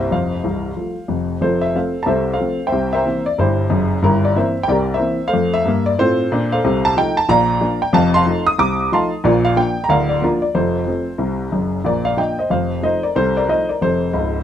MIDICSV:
0, 0, Header, 1, 2, 480
1, 0, Start_track
1, 0, Key_signature, -1, "major"
1, 0, Tempo, 326087
1, 169, Time_signature, 4, 2, 24, 8
1, 9770, Key_signature, -2, "major"
1, 21242, End_track
2, 0, Start_track
2, 0, Title_t, "Upright piano"
2, 0, Program_c, 0, 0
2, 0, Control_c, 0, 64, 127
2, 0, Note_on_c, 0, 36, 65
2, 0, Note_on_c, 0, 48, 60
2, 0, Note_on_c, 0, 55, 38
2, 0, Note_on_c, 0, 58, 37
2, 0, Note_on_c, 0, 64, 38
2, 0, Note_on_c, 0, 67, 57
2, 0, Note_on_c, 0, 72, 73
2, 0, Note_on_c, 0, 76, 58
2, 6, Note_off_c, 0, 72, 0
2, 6, Note_on_c, 0, 72, 51
2, 161, Note_on_c, 0, 29, 50
2, 165, Note_on_c, 0, 41, 60
2, 170, Note_off_c, 0, 72, 0
2, 175, Note_off_c, 0, 76, 0
2, 181, Note_on_c, 0, 77, 70
2, 185, Control_c, 0, 64, 0
2, 191, Note_off_c, 0, 36, 0
2, 193, Note_off_c, 0, 64, 0
2, 193, Note_off_c, 0, 67, 0
2, 194, Note_off_c, 0, 48, 0
2, 196, Note_off_c, 0, 55, 0
2, 198, Note_on_c, 0, 72, 51
2, 200, Note_off_c, 0, 58, 0
2, 427, Control_c, 0, 64, 127
2, 548, Note_off_c, 0, 29, 0
2, 551, Note_off_c, 0, 41, 0
2, 641, Note_on_c, 0, 24, 55
2, 646, Note_on_c, 0, 36, 56
2, 665, Control_c, 0, 64, 0
2, 1029, Note_off_c, 0, 24, 0
2, 1032, Note_off_c, 0, 36, 0
2, 1122, Note_on_c, 0, 57, 34
2, 1123, Note_on_c, 0, 53, 35
2, 1123, Note_on_c, 0, 65, 31
2, 1388, Note_off_c, 0, 57, 0
2, 1389, Note_off_c, 0, 53, 0
2, 1389, Note_off_c, 0, 65, 0
2, 1594, Note_on_c, 0, 41, 52
2, 1597, Note_on_c, 0, 29, 51
2, 1856, Note_off_c, 0, 72, 0
2, 1906, Note_off_c, 0, 77, 0
2, 1985, Note_off_c, 0, 41, 0
2, 1986, Note_off_c, 0, 29, 0
2, 2074, Note_on_c, 0, 29, 59
2, 2077, Note_on_c, 0, 41, 61
2, 2089, Note_on_c, 0, 72, 76
2, 2102, Note_on_c, 0, 69, 63
2, 2106, Note_on_c, 0, 65, 54
2, 2341, Control_c, 0, 64, 127
2, 2367, Note_off_c, 0, 69, 0
2, 2369, Note_off_c, 0, 65, 0
2, 2377, Note_on_c, 0, 76, 82
2, 2380, Note_off_c, 0, 72, 0
2, 2489, Note_off_c, 0, 29, 0
2, 2491, Note_off_c, 0, 41, 0
2, 2568, Note_off_c, 0, 76, 0
2, 2579, Note_on_c, 0, 53, 41
2, 2582, Note_on_c, 0, 57, 37
2, 2582, Note_on_c, 0, 60, 41
2, 2589, Control_c, 0, 64, 0
2, 2591, Note_on_c, 0, 77, 60
2, 2600, Note_on_c, 0, 72, 52
2, 2607, Note_on_c, 0, 69, 53
2, 2841, Note_off_c, 0, 53, 0
2, 2843, Note_off_c, 0, 57, 0
2, 2843, Note_off_c, 0, 60, 0
2, 2944, Note_off_c, 0, 72, 0
2, 2948, Note_off_c, 0, 69, 0
2, 2966, Note_off_c, 0, 77, 0
2, 2984, Note_on_c, 0, 81, 74
2, 3032, Note_on_c, 0, 48, 64
2, 3034, Note_on_c, 0, 36, 61
2, 3045, Note_on_c, 0, 76, 71
2, 3062, Note_on_c, 0, 69, 60
2, 3064, Note_off_c, 0, 81, 0
2, 3064, Note_on_c, 0, 72, 64
2, 3415, Note_off_c, 0, 69, 0
2, 3416, Note_off_c, 0, 72, 0
2, 3433, Note_off_c, 0, 76, 0
2, 3437, Note_on_c, 0, 77, 71
2, 3448, Note_off_c, 0, 48, 0
2, 3449, Note_off_c, 0, 36, 0
2, 3453, Note_on_c, 0, 69, 51
2, 3453, Note_on_c, 0, 72, 43
2, 3536, Note_on_c, 0, 53, 41
2, 3541, Note_on_c, 0, 57, 47
2, 3543, Note_on_c, 0, 60, 47
2, 3798, Note_off_c, 0, 53, 0
2, 3802, Note_off_c, 0, 57, 0
2, 3804, Note_off_c, 0, 60, 0
2, 3892, Note_off_c, 0, 69, 0
2, 3892, Note_off_c, 0, 72, 0
2, 3917, Note_off_c, 0, 77, 0
2, 3929, Note_on_c, 0, 79, 75
2, 3944, Note_on_c, 0, 72, 64
2, 3949, Note_on_c, 0, 76, 58
2, 4005, Note_on_c, 0, 36, 60
2, 4005, Note_on_c, 0, 48, 61
2, 4261, Control_c, 0, 64, 127
2, 4286, Note_off_c, 0, 76, 0
2, 4289, Note_off_c, 0, 72, 0
2, 4308, Note_off_c, 0, 79, 0
2, 4309, Note_on_c, 0, 76, 80
2, 4333, Note_on_c, 0, 70, 65
2, 4338, Note_on_c, 0, 72, 69
2, 4415, Note_off_c, 0, 36, 0
2, 4415, Note_off_c, 0, 48, 0
2, 4494, Note_on_c, 0, 52, 38
2, 4502, Note_on_c, 0, 58, 37
2, 4509, Control_c, 0, 64, 0
2, 4511, Note_on_c, 0, 60, 39
2, 4757, Note_off_c, 0, 52, 0
2, 4763, Note_off_c, 0, 58, 0
2, 4764, Note_off_c, 0, 70, 0
2, 4767, Note_off_c, 0, 72, 0
2, 4770, Note_off_c, 0, 60, 0
2, 4785, Note_off_c, 0, 76, 0
2, 4799, Note_on_c, 0, 74, 79
2, 4978, Note_on_c, 0, 43, 67
2, 4980, Note_off_c, 0, 74, 0
2, 4982, Note_on_c, 0, 31, 63
2, 4995, Note_on_c, 0, 72, 72
2, 5011, Note_on_c, 0, 64, 57
2, 5014, Note_on_c, 0, 67, 56
2, 5383, Note_off_c, 0, 43, 0
2, 5385, Note_off_c, 0, 31, 0
2, 5445, Note_on_c, 0, 42, 75
2, 5448, Note_on_c, 0, 30, 72
2, 5709, Note_off_c, 0, 64, 0
2, 5711, Note_off_c, 0, 67, 0
2, 5754, Note_off_c, 0, 72, 0
2, 5831, Note_off_c, 0, 42, 0
2, 5833, Note_off_c, 0, 30, 0
2, 5922, Note_on_c, 0, 43, 76
2, 5928, Note_on_c, 0, 31, 66
2, 5943, Note_on_c, 0, 70, 89
2, 5954, Note_on_c, 0, 67, 61
2, 5958, Note_on_c, 0, 64, 63
2, 6191, Control_c, 0, 64, 127
2, 6213, Note_off_c, 0, 67, 0
2, 6216, Note_off_c, 0, 64, 0
2, 6228, Note_off_c, 0, 70, 0
2, 6250, Note_on_c, 0, 74, 85
2, 6334, Note_off_c, 0, 43, 0
2, 6337, Note_off_c, 0, 31, 0
2, 6420, Note_on_c, 0, 52, 46
2, 6422, Note_on_c, 0, 60, 46
2, 6423, Control_c, 0, 64, 0
2, 6425, Note_off_c, 0, 74, 0
2, 6425, Note_on_c, 0, 76, 75
2, 6428, Note_on_c, 0, 58, 45
2, 6447, Note_on_c, 0, 72, 57
2, 6449, Note_on_c, 0, 70, 50
2, 6681, Note_off_c, 0, 52, 0
2, 6683, Note_off_c, 0, 60, 0
2, 6687, Note_off_c, 0, 58, 0
2, 6789, Note_off_c, 0, 72, 0
2, 6790, Note_off_c, 0, 70, 0
2, 6803, Note_off_c, 0, 76, 0
2, 6822, Note_on_c, 0, 79, 90
2, 6887, Note_on_c, 0, 36, 70
2, 6894, Note_on_c, 0, 48, 58
2, 6904, Note_off_c, 0, 79, 0
2, 6909, Note_on_c, 0, 74, 84
2, 6930, Note_on_c, 0, 67, 65
2, 6933, Note_on_c, 0, 70, 74
2, 7268, Note_off_c, 0, 70, 0
2, 7270, Note_off_c, 0, 67, 0
2, 7275, Note_on_c, 0, 76, 78
2, 7285, Note_off_c, 0, 74, 0
2, 7290, Note_on_c, 0, 70, 52
2, 7294, Note_on_c, 0, 72, 55
2, 7297, Note_off_c, 0, 36, 0
2, 7300, Note_off_c, 0, 48, 0
2, 7353, Note_on_c, 0, 52, 48
2, 7361, Note_on_c, 0, 58, 42
2, 7371, Note_on_c, 0, 60, 45
2, 7622, Note_off_c, 0, 52, 0
2, 7627, Note_off_c, 0, 58, 0
2, 7635, Note_off_c, 0, 60, 0
2, 7729, Note_off_c, 0, 70, 0
2, 7732, Note_off_c, 0, 72, 0
2, 7755, Note_off_c, 0, 76, 0
2, 7767, Note_on_c, 0, 77, 93
2, 7780, Note_on_c, 0, 69, 63
2, 7787, Note_on_c, 0, 72, 62
2, 7850, Note_on_c, 0, 41, 66
2, 7870, Note_on_c, 0, 57, 68
2, 8107, Control_c, 0, 64, 127
2, 8127, Note_off_c, 0, 69, 0
2, 8131, Note_off_c, 0, 72, 0
2, 8147, Note_off_c, 0, 77, 0
2, 8149, Note_on_c, 0, 76, 91
2, 8234, Note_off_c, 0, 41, 0
2, 8246, Note_off_c, 0, 57, 0
2, 8321, Note_on_c, 0, 43, 71
2, 8346, Control_c, 0, 64, 0
2, 8353, Note_on_c, 0, 58, 72
2, 8625, Note_off_c, 0, 76, 0
2, 8626, Note_on_c, 0, 74, 85
2, 8708, Note_off_c, 0, 43, 0
2, 8728, Note_off_c, 0, 58, 0
2, 8811, Note_on_c, 0, 45, 72
2, 8813, Note_off_c, 0, 74, 0
2, 8820, Note_on_c, 0, 72, 93
2, 8830, Note_on_c, 0, 60, 73
2, 8833, Note_on_c, 0, 65, 71
2, 8837, Note_on_c, 0, 69, 68
2, 9194, Note_off_c, 0, 45, 0
2, 9206, Note_off_c, 0, 60, 0
2, 9300, Note_on_c, 0, 46, 81
2, 9321, Note_on_c, 0, 62, 74
2, 9539, Note_off_c, 0, 65, 0
2, 9541, Note_off_c, 0, 69, 0
2, 9585, Note_off_c, 0, 72, 0
2, 9604, Note_on_c, 0, 77, 86
2, 9612, Note_on_c, 0, 72, 64
2, 9619, Note_on_c, 0, 69, 59
2, 9680, Note_off_c, 0, 46, 0
2, 9692, Note_off_c, 0, 62, 0
2, 9781, Note_on_c, 0, 36, 68
2, 9782, Note_on_c, 0, 48, 88
2, 10029, Control_c, 0, 64, 127
2, 10044, Note_off_c, 0, 72, 0
2, 10048, Note_off_c, 0, 69, 0
2, 10072, Note_off_c, 0, 77, 0
2, 10082, Note_on_c, 0, 81, 104
2, 10184, Note_off_c, 0, 36, 0
2, 10185, Note_off_c, 0, 48, 0
2, 10255, Note_on_c, 0, 53, 52
2, 10261, Note_off_c, 0, 81, 0
2, 10261, Note_on_c, 0, 57, 48
2, 10263, Control_c, 0, 64, 0
2, 10269, Note_on_c, 0, 63, 55
2, 10272, Note_on_c, 0, 79, 95
2, 10518, Note_off_c, 0, 53, 0
2, 10522, Note_off_c, 0, 57, 0
2, 10528, Note_off_c, 0, 63, 0
2, 10551, Note_off_c, 0, 79, 0
2, 10557, Note_on_c, 0, 81, 96
2, 10726, Note_on_c, 0, 34, 73
2, 10728, Note_on_c, 0, 46, 82
2, 10734, Note_on_c, 0, 82, 111
2, 10738, Note_off_c, 0, 81, 0
2, 10758, Note_on_c, 0, 77, 74
2, 10761, Note_on_c, 0, 74, 87
2, 10990, Control_c, 0, 64, 127
2, 11135, Note_off_c, 0, 34, 0
2, 11136, Note_off_c, 0, 46, 0
2, 11199, Note_on_c, 0, 53, 59
2, 11205, Note_on_c, 0, 58, 46
2, 11205, Note_on_c, 0, 62, 61
2, 11222, Control_c, 0, 64, 0
2, 11461, Note_off_c, 0, 77, 0
2, 11463, Note_off_c, 0, 74, 0
2, 11466, Note_off_c, 0, 53, 0
2, 11470, Note_off_c, 0, 58, 0
2, 11470, Note_off_c, 0, 62, 0
2, 11502, Note_off_c, 0, 82, 0
2, 11510, Note_on_c, 0, 79, 82
2, 11670, Note_on_c, 0, 29, 80
2, 11674, Note_on_c, 0, 41, 90
2, 11691, Note_on_c, 0, 81, 97
2, 11694, Note_off_c, 0, 79, 0
2, 11704, Note_on_c, 0, 77, 74
2, 11706, Note_on_c, 0, 75, 66
2, 11949, Control_c, 0, 64, 127
2, 11967, Note_off_c, 0, 77, 0
2, 11969, Note_off_c, 0, 75, 0
2, 11981, Note_off_c, 0, 81, 0
2, 11985, Note_on_c, 0, 84, 107
2, 12009, Note_on_c, 0, 81, 81
2, 12011, Note_on_c, 0, 77, 83
2, 12086, Note_off_c, 0, 29, 0
2, 12088, Note_off_c, 0, 41, 0
2, 12166, Note_on_c, 0, 53, 48
2, 12176, Note_on_c, 0, 57, 57
2, 12180, Note_on_c, 0, 63, 53
2, 12183, Control_c, 0, 64, 0
2, 12431, Note_off_c, 0, 53, 0
2, 12438, Note_off_c, 0, 57, 0
2, 12441, Note_off_c, 0, 63, 0
2, 12441, Note_off_c, 0, 81, 0
2, 12443, Note_off_c, 0, 77, 0
2, 12461, Note_on_c, 0, 87, 99
2, 12463, Note_off_c, 0, 84, 0
2, 12636, Note_on_c, 0, 36, 67
2, 12641, Note_on_c, 0, 48, 66
2, 12648, Note_on_c, 0, 86, 98
2, 12650, Note_off_c, 0, 87, 0
2, 13050, Note_off_c, 0, 36, 0
2, 13052, Note_off_c, 0, 48, 0
2, 13128, Note_off_c, 0, 86, 0
2, 13132, Note_on_c, 0, 53, 59
2, 13141, Note_on_c, 0, 63, 57
2, 13142, Note_on_c, 0, 57, 49
2, 13146, Note_on_c, 0, 84, 86
2, 13161, Note_on_c, 0, 77, 74
2, 13161, Note_on_c, 0, 81, 67
2, 13395, Note_off_c, 0, 53, 0
2, 13402, Note_off_c, 0, 57, 0
2, 13402, Note_off_c, 0, 63, 0
2, 13417, Note_off_c, 0, 77, 0
2, 13417, Note_off_c, 0, 81, 0
2, 13428, Note_off_c, 0, 84, 0
2, 13600, Note_on_c, 0, 34, 80
2, 13608, Note_on_c, 0, 46, 80
2, 13614, Note_on_c, 0, 74, 92
2, 13640, Note_on_c, 0, 65, 79
2, 13641, Note_on_c, 0, 70, 71
2, 13864, Control_c, 0, 64, 127
2, 13896, Note_off_c, 0, 65, 0
2, 13897, Note_off_c, 0, 70, 0
2, 13902, Note_off_c, 0, 74, 0
2, 13905, Note_on_c, 0, 77, 94
2, 14012, Note_off_c, 0, 34, 0
2, 14017, Note_off_c, 0, 46, 0
2, 14076, Note_on_c, 0, 53, 46
2, 14083, Note_on_c, 0, 58, 50
2, 14087, Note_on_c, 0, 62, 45
2, 14090, Note_on_c, 0, 79, 91
2, 14092, Note_off_c, 0, 77, 0
2, 14105, Control_c, 0, 64, 0
2, 14344, Note_off_c, 0, 53, 0
2, 14349, Note_off_c, 0, 58, 0
2, 14352, Note_off_c, 0, 62, 0
2, 14475, Note_off_c, 0, 79, 0
2, 14482, Note_on_c, 0, 82, 86
2, 14555, Note_on_c, 0, 26, 64
2, 14557, Note_on_c, 0, 38, 79
2, 14569, Note_on_c, 0, 77, 98
2, 14573, Note_off_c, 0, 82, 0
2, 14592, Note_on_c, 0, 70, 66
2, 14592, Note_on_c, 0, 74, 70
2, 14825, Control_c, 0, 64, 127
2, 14831, Note_off_c, 0, 74, 0
2, 14852, Note_off_c, 0, 70, 0
2, 14853, Note_on_c, 0, 74, 78
2, 14860, Note_off_c, 0, 77, 0
2, 14969, Note_off_c, 0, 26, 0
2, 14970, Note_off_c, 0, 38, 0
2, 15042, Note_on_c, 0, 53, 46
2, 15043, Note_on_c, 0, 58, 45
2, 15046, Note_off_c, 0, 74, 0
2, 15054, Note_on_c, 0, 70, 74
2, 15065, Control_c, 0, 64, 0
2, 15066, Note_on_c, 0, 62, 58
2, 15073, Note_on_c, 0, 65, 70
2, 15308, Note_off_c, 0, 53, 0
2, 15309, Note_off_c, 0, 58, 0
2, 15329, Note_off_c, 0, 62, 0
2, 15332, Note_off_c, 0, 65, 0
2, 15336, Note_on_c, 0, 74, 73
2, 15342, Note_off_c, 0, 70, 0
2, 15523, Note_on_c, 0, 29, 63
2, 15524, Note_on_c, 0, 41, 62
2, 15526, Note_on_c, 0, 72, 74
2, 15527, Note_off_c, 0, 74, 0
2, 15553, Note_on_c, 0, 69, 49
2, 15556, Note_on_c, 0, 65, 53
2, 15790, Control_c, 0, 64, 127
2, 15934, Note_off_c, 0, 29, 0
2, 15935, Note_off_c, 0, 41, 0
2, 15997, Note_on_c, 0, 53, 43
2, 16005, Note_on_c, 0, 60, 43
2, 16007, Note_on_c, 0, 57, 43
2, 16022, Control_c, 0, 64, 0
2, 16264, Note_off_c, 0, 53, 0
2, 16270, Note_off_c, 0, 60, 0
2, 16271, Note_off_c, 0, 57, 0
2, 16462, Note_on_c, 0, 36, 58
2, 16467, Note_on_c, 0, 48, 54
2, 16882, Note_off_c, 0, 36, 0
2, 16885, Note_off_c, 0, 48, 0
2, 16923, Note_off_c, 0, 69, 0
2, 16924, Note_off_c, 0, 65, 0
2, 16957, Note_on_c, 0, 30, 59
2, 16960, Note_on_c, 0, 42, 64
2, 16968, Note_off_c, 0, 72, 0
2, 17346, Note_off_c, 0, 30, 0
2, 17348, Note_off_c, 0, 42, 0
2, 17433, Note_on_c, 0, 34, 55
2, 17434, Note_on_c, 0, 46, 69
2, 17460, Note_on_c, 0, 74, 80
2, 17472, Note_on_c, 0, 70, 62
2, 17696, Control_c, 0, 64, 127
2, 17733, Note_off_c, 0, 70, 0
2, 17736, Note_off_c, 0, 74, 0
2, 17737, Note_on_c, 0, 77, 83
2, 17758, Note_on_c, 0, 74, 60
2, 17849, Note_off_c, 0, 34, 0
2, 17849, Note_off_c, 0, 46, 0
2, 17914, Note_on_c, 0, 53, 37
2, 17920, Note_on_c, 0, 58, 38
2, 17927, Note_off_c, 0, 74, 0
2, 17928, Note_off_c, 0, 77, 0
2, 17929, Note_on_c, 0, 79, 69
2, 17931, Note_on_c, 0, 62, 43
2, 17945, Note_on_c, 0, 75, 55
2, 17953, Control_c, 0, 64, 0
2, 18183, Note_off_c, 0, 53, 0
2, 18187, Note_off_c, 0, 58, 0
2, 18195, Note_off_c, 0, 62, 0
2, 18209, Note_off_c, 0, 75, 0
2, 18221, Note_off_c, 0, 79, 0
2, 18235, Note_on_c, 0, 75, 63
2, 18249, Note_on_c, 0, 72, 49
2, 18404, Note_on_c, 0, 29, 54
2, 18404, Note_on_c, 0, 41, 63
2, 18413, Note_off_c, 0, 72, 0
2, 18415, Note_on_c, 0, 77, 74
2, 18418, Note_off_c, 0, 75, 0
2, 18436, Note_on_c, 0, 72, 58
2, 18663, Control_c, 0, 64, 127
2, 18816, Note_off_c, 0, 29, 0
2, 18816, Note_off_c, 0, 41, 0
2, 18872, Note_off_c, 0, 72, 0
2, 18877, Note_on_c, 0, 53, 36
2, 18885, Note_on_c, 0, 57, 36
2, 18887, Note_on_c, 0, 63, 43
2, 18893, Note_on_c, 0, 75, 74
2, 18894, Note_off_c, 0, 77, 0
2, 18910, Control_c, 0, 64, 0
2, 18914, Note_on_c, 0, 72, 63
2, 19145, Note_off_c, 0, 53, 0
2, 19151, Note_off_c, 0, 57, 0
2, 19153, Note_off_c, 0, 63, 0
2, 19175, Note_off_c, 0, 72, 0
2, 19183, Note_off_c, 0, 75, 0
2, 19185, Note_on_c, 0, 74, 72
2, 19199, Note_on_c, 0, 70, 49
2, 19363, Note_on_c, 0, 48, 61
2, 19368, Note_off_c, 0, 70, 0
2, 19368, Note_on_c, 0, 36, 69
2, 19373, Note_on_c, 0, 72, 88
2, 19374, Note_off_c, 0, 74, 0
2, 19396, Note_on_c, 0, 69, 57
2, 19618, Control_c, 0, 64, 127
2, 19656, Note_off_c, 0, 69, 0
2, 19664, Note_off_c, 0, 72, 0
2, 19680, Note_on_c, 0, 74, 81
2, 19700, Note_on_c, 0, 70, 62
2, 19776, Note_off_c, 0, 48, 0
2, 19778, Note_off_c, 0, 36, 0
2, 19849, Note_on_c, 0, 53, 36
2, 19855, Note_on_c, 0, 57, 42
2, 19859, Note_off_c, 0, 70, 0
2, 19860, Note_on_c, 0, 63, 39
2, 19861, Note_off_c, 0, 74, 0
2, 19862, Note_on_c, 0, 75, 76
2, 19876, Control_c, 0, 64, 0
2, 19885, Note_on_c, 0, 72, 61
2, 20115, Note_off_c, 0, 53, 0
2, 20119, Note_off_c, 0, 57, 0
2, 20122, Note_off_c, 0, 63, 0
2, 20141, Note_off_c, 0, 72, 0
2, 20149, Note_off_c, 0, 75, 0
2, 20152, Note_on_c, 0, 74, 63
2, 20172, Note_on_c, 0, 70, 56
2, 20334, Note_on_c, 0, 29, 60
2, 20336, Note_off_c, 0, 70, 0
2, 20337, Note_on_c, 0, 41, 54
2, 20338, Note_off_c, 0, 74, 0
2, 20346, Note_on_c, 0, 72, 78
2, 20364, Note_on_c, 0, 69, 52
2, 20742, Note_off_c, 0, 29, 0
2, 20744, Note_off_c, 0, 41, 0
2, 20805, Note_on_c, 0, 37, 64
2, 20811, Note_on_c, 0, 25, 72
2, 21193, Note_off_c, 0, 37, 0
2, 21197, Note_off_c, 0, 25, 0
2, 21242, Note_off_c, 0, 69, 0
2, 21242, Note_off_c, 0, 72, 0
2, 21242, End_track
0, 0, End_of_file